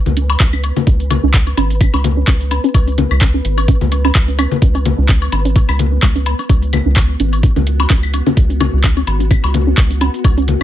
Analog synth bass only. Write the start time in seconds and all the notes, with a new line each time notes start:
0.06 C#2
0.40 C#2
0.87 C#2
1.23 C#2
1.57 G#1
1.94 C#2
2.28 C#2
2.74 C#2
3.11 C#2
3.45 G#1
3.81 C#2
4.15 C#2
4.62 C#2
4.98 C#2
5.32 G#1
5.69 C#2
6.03 C#2
6.50 C#2
6.86 C#2
7.20 G#1
7.56 C#2
7.90 C#2
8.37 C#2
8.73 C#2
9.07 G#1
9.44 C#2
9.78 C#2
10.24 C#2